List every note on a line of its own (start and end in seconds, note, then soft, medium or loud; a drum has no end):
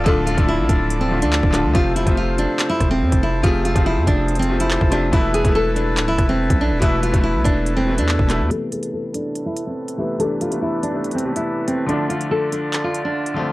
0.00 0.04 D3 loud
0.00 0.33 D3 loud
0.00 0.05 F3 medium
0.00 1.71 F3 medium
0.00 0.06 A3 medium
0.00 0.07 D4 medium
0.00 0.09 F4 loud
0.00 8.47 A4 medium
0.00 1.71 D5 medium
0.00 8.47 A5 medium
0.05 0.36 D1 loud
0.05 0.34 F3 medium
0.05 0.35 A3 medium
0.05 0.35 D4 medium
0.05 0.36 F4 loud
0.05 0.23 A4 medium
0.05 kick loud
0.05 closed hi-hat medium
0.27 0.44 F4 medium
0.27 closed hi-hat medium
0.35 0.60 D1 loud
0.35 1.03 D3 medium
0.35 1.04 F3 medium
0.35 1.04 A3 medium
0.35 1.05 D4 medium
0.35 kick loud
0.35 closed hi-hat medium
0.40 1.06 E4 medium
0.48 0.65 E4 medium
0.59 0.69 A1 loud
0.69 1.24 D1 loud
0.69 0.99 D4 medium
0.69 kick medium
0.69 closed hi-hat medium
0.90 closed hi-hat medium
1.01 1.18 C4 medium
1.09 1.49 D3 medium
1.09 1.49 F3 medium
1.09 1.50 A3 medium
1.09 1.50 D4 medium
1.14 1.51 F4 medium
1.22 1.42 D2 loud
1.22 1.72 D4 medium
1.22 closed hi-hat loud
1.33 clap loud
1.43 1.66 D1 loud
1.43 kick loud
1.51 1.71 D3 medium
1.51 1.72 F3 medium
1.51 1.73 A3 medium
1.51 1.73 D4 medium
1.51 cross-stick medium
1.51 clap medium
1.51 closed hi-hat medium
1.55 1.74 F4 medium
1.64 1.74 D2 loud
1.72 1.97 F1 loud
1.72 2.02 C3 medium
1.72 2.03 F3 loud
1.72 5.10 F3 medium
1.72 2.04 A3 medium
1.72 2.04 C4 medium
1.72 1.92 F4 medium
1.72 5.10 C5 medium
1.72 kick loud
1.72 closed hi-hat medium
1.77 2.05 F4 loud
1.96 2.06 E1 loud
1.96 2.13 E4 medium
1.96 closed hi-hat medium
2.05 2.47 F1 loud
2.05 2.82 C3 medium
2.05 2.83 F3 medium
2.05 2.83 A3 medium
2.05 2.84 C4 medium
2.05 kick loud
2.05 closed hi-hat medium
2.09 2.85 F4 medium
2.17 2.34 F4 medium
2.38 2.68 D4 medium
2.38 closed hi-hat medium
2.59 clap loud
2.59 closed hi-hat medium
2.70 2.87 E4 medium
2.80 3.03 E1 loud
2.80 kick medium
2.80 cross-stick medium
2.80 closed hi-hat medium
2.91 3.21 C4 medium
3.02 3.12 F2 loud
3.12 3.43 F1 loud
3.12 kick loud
3.12 closed hi-hat medium
3.23 3.40 E4 medium
3.42 3.74 F1 loud
3.42 3.72 C3 loud
3.42 3.72 F3 medium
3.42 3.73 A3 medium
3.42 3.73 C4 medium
3.42 3.61 F4 medium
3.42 kick loud
3.42 closed hi-hat medium
3.47 3.74 G#4 loud
3.65 3.82 F4 medium
3.65 closed hi-hat medium
3.73 3.98 F1 loud
3.73 4.42 C3 medium
3.73 4.42 F3 medium
3.73 4.43 A3 medium
3.73 4.43 C4 medium
3.73 kick loud
3.73 closed hi-hat medium
3.78 4.44 F4 medium
3.86 4.03 E4 medium
3.97 4.07 F2 loud
4.07 4.78 F1 loud
4.07 4.37 D4 medium
4.07 kick medium
4.07 closed hi-hat medium
4.28 closed hi-hat soft
4.35 4.56 C4 medium
4.35 closed hi-hat medium
4.42 closed hi-hat medium
4.47 4.87 C3 medium
4.47 4.87 F3 medium
4.47 4.88 A3 medium
4.47 4.88 C4 medium
4.52 4.89 F4 medium
4.60 4.90 E4 medium
4.60 closed hi-hat loud
4.71 clap loud
4.81 5.12 F1 loud
4.81 kick loud
4.81 cross-stick medium
4.89 5.10 C3 medium
4.89 5.10 F3 medium
4.89 5.11 A3 medium
4.89 5.12 C4 medium
4.89 5.09 D4 medium
4.89 cross-stick medium
4.89 closed hi-hat medium
4.94 5.12 F4 medium
5.11 5.43 E1 loud
5.11 5.41 B2 loud
5.11 5.41 E3 medium
5.11 5.42 A3 medium
5.11 5.42 B3 loud
5.11 8.48 E4 medium
5.11 5.30 E4 medium
5.11 8.48 B4 medium
5.11 kick loud
5.11 closed hi-hat medium
5.16 5.43 E4 loud
5.34 5.51 G#4 medium
5.34 closed hi-hat medium
5.43 5.99 E1 loud
5.43 6.20 B2 medium
5.43 6.21 E3 medium
5.43 6.22 A3 medium
5.43 6.22 B3 medium
5.43 kick loud
5.43 closed hi-hat medium
5.47 6.23 E4 medium
5.55 5.72 A4 medium
5.76 6.06 D4 medium
5.76 closed hi-hat medium
5.97 6.17 D1 loud
5.97 clap loud
5.97 closed hi-hat medium
6.08 6.25 E4 medium
6.18 6.49 E1 loud
6.18 kick medium
6.18 cross-stick medium
6.18 closed hi-hat medium
6.29 6.59 C4 medium
6.50 6.73 B1 loud
6.50 kick loud
6.50 closed hi-hat medium
6.61 6.78 D4 medium
6.71 6.81 D1 loud
6.79 7.12 E1 loud
6.79 7.09 B2 loud
6.79 7.10 E3 medium
6.79 7.11 A3 medium
6.79 7.11 B3 medium
6.79 6.99 E4 medium
6.79 kick loud
6.79 closed hi-hat medium
6.84 7.12 E4 loud
7.03 7.20 F4 medium
7.03 closed hi-hat medium
7.11 7.36 E1 loud
7.11 7.79 B2 medium
7.11 7.80 E3 medium
7.11 7.81 A3 medium
7.11 7.81 B3 medium
7.11 kick loud
7.11 closed hi-hat medium
7.16 7.82 E4 medium
7.24 7.41 E4 medium
7.35 7.45 B1 loud
7.44 8.00 E1 loud
7.44 7.75 D4 medium
7.44 kick loud
7.44 closed hi-hat medium
7.66 closed hi-hat medium
7.77 7.94 C4 medium
7.86 8.25 B2 medium
7.86 8.26 E3 medium
7.86 8.26 A3 medium
7.86 8.27 B3 medium
7.91 8.28 E4 medium
7.98 8.18 E2 loud
7.98 8.48 D4 medium
7.98 closed hi-hat loud
8.09 clap loud
8.19 8.42 E1 loud
8.19 kick loud
8.27 8.48 B2 medium
8.27 8.48 E3 medium
8.27 8.49 A3 medium
8.27 8.49 B3 medium
8.27 cross-stick medium
8.27 clap medium
8.27 closed hi-hat medium
8.32 8.50 E4 medium
8.40 8.50 E2 loud
8.48 11.86 A2 medium
8.48 9.26 C3 medium
8.48 9.27 E3 medium
8.48 13.52 A3 medium
8.48 9.28 A3 medium
8.48 8.68 A4 medium
8.48 11.86 A4 medium
8.48 11.86 B4 medium
8.48 closed hi-hat medium
8.72 8.89 G#4 medium
8.72 closed hi-hat medium
8.83 closed hi-hat medium
8.93 9.10 A4 medium
9.14 9.44 D4 medium
9.14 closed hi-hat medium
9.35 closed hi-hat medium
9.46 9.63 E4 medium
9.56 closed hi-hat medium
9.67 9.97 C4 medium
9.88 closed hi-hat medium
9.96 10.17 C3 medium
9.96 10.18 E3 medium
9.96 10.18 A3 medium
9.96 10.15 E4 medium
10.01 10.19 B3 medium
10.18 10.47 C3 loud
10.18 10.49 E3 medium
10.18 10.49 A3 medium
10.18 10.37 A4 medium
10.18 closed hi-hat medium
10.23 10.50 D4 loud
10.41 10.58 F4 medium
10.41 closed hi-hat medium
10.49 10.88 C3 medium
10.49 10.89 E3 medium
10.49 10.90 A3 medium
10.49 closed hi-hat medium
10.53 10.91 B3 medium
10.62 10.79 E4 medium
10.83 11.13 D4 medium
10.83 closed hi-hat medium
10.92 11.22 C3 medium
10.92 11.22 E3 medium
10.92 11.23 A3 medium
10.97 11.24 B3 medium
11.04 closed hi-hat soft
11.11 11.32 C4 medium
11.11 closed hi-hat medium
11.18 closed hi-hat medium
11.23 11.82 C3 medium
11.23 11.83 E3 medium
11.23 11.83 A3 medium
11.28 11.84 B3 medium
11.36 11.66 E4 medium
11.36 closed hi-hat medium
11.68 11.85 C4 medium
11.68 closed hi-hat medium
11.87 12.64 D3 loud
11.87 13.52 D3 medium
11.87 12.65 F3 medium
11.87 12.66 A3 medium
11.87 12.06 D4 medium
11.87 13.52 F4 medium
11.87 13.52 D5 medium
11.87 closed hi-hat medium
11.91 12.67 D4 loud
12.10 12.27 F4 medium
12.10 closed hi-hat medium
12.21 closed hi-hat medium
12.31 12.48 A4 medium
12.52 12.82 D4 medium
12.52 closed hi-hat medium
12.73 clap loud
12.73 closed hi-hat medium
12.84 13.01 F4 medium
12.95 closed hi-hat medium
13.05 13.35 D4 medium
13.26 closed hi-hat medium
13.34 13.52 D3 medium
13.34 13.52 F3 medium
13.34 13.52 A3 medium
13.34 13.52 F4 medium
13.39 13.52 C4 medium